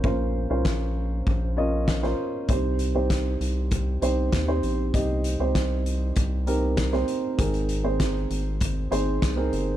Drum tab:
HH |----------------|x-x-x-x-x-x-x-x-|x-x-x-x-x-x-x-x-|xxx-x-x-x-x-x-x-|
SD |----o-------oo--|----o-------o---|----o-------oo--|----o-------o---|
BD |o---o---o---o---|o---o---o---o---|o---o---o---o---|o---o---o---o---|